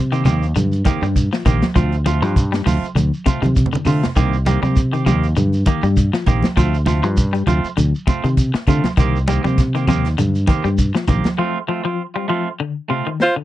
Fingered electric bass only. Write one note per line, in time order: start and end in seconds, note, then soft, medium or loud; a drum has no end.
0.00 0.27 C3 medium
0.26 0.52 D#2 medium
0.56 0.82 G2 loud
1.02 1.28 G2 medium
1.46 1.60 A#1 medium
1.76 2.22 D2 medium
2.22 2.60 G2 medium
2.66 2.81 D2 medium
2.95 3.10 D2 loud
3.42 3.69 C3 medium
3.73 muted fingered electric bass stroke soft
3.86 4.01 D3 medium
4.16 4.57 C2 medium
4.63 5.08 C3 medium
5.07 5.33 D#2 medium
5.37 5.63 G2 loud
5.83 6.09 G2 medium
6.27 6.41 A#1 medium
6.43 muted fingered electric bass stroke soft
6.57 7.03 D2 medium
7.03 7.41 G2 medium
7.48 7.62 D2 medium
7.64 muted fingered electric bass stroke soft
7.78 7.92 D2 medium
8.24 8.50 C3 medium
8.55 muted fingered electric bass stroke soft
8.67 8.82 D3 medium
8.98 9.38 C2 loud
9.45 9.90 C3 medium
9.88 10.14 D#2 loud
10.19 10.45 G2 loud
10.65 10.91 G2 medium
11.09 11.23 A#1 medium